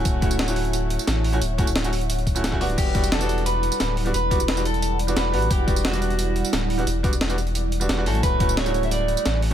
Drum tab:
CC |----------------|----------------|x---------------|----------------|
HH |x-x-xxoxx-x-x-ox|x-x-xxoxxxx-x-ox|x-x-xxxxx-x-x-ox|x-x-xxxxx-x-x-ox|
TB |x-xx-xx-x--xx---|x-xx-xx-x-xxx-x-|x-xx-xx-x--xx---|x-xx-xx-x--xx---|
SD |----o-------o---|----o-------o---|----o-------o---|----o-------o---|
BD |o-o-------------|--o-------o--o--|o-o-------------|--o-------------|

CC |----------------|----------------|----------------|
HH |x-x-xxxxx-x-x-ox|x-x-xxxxx-x-x-ox|x-x-xxxxx-x-x-o-|
TB |x-xx-xx-x--xx---|x-xx-xx-x--xx-x-|x-xx-xx-x--xx---|
SD |----o-------o---|----o-------o---|----o-------o---|
BD |o-o-------------|--o-------------|o-o-------------|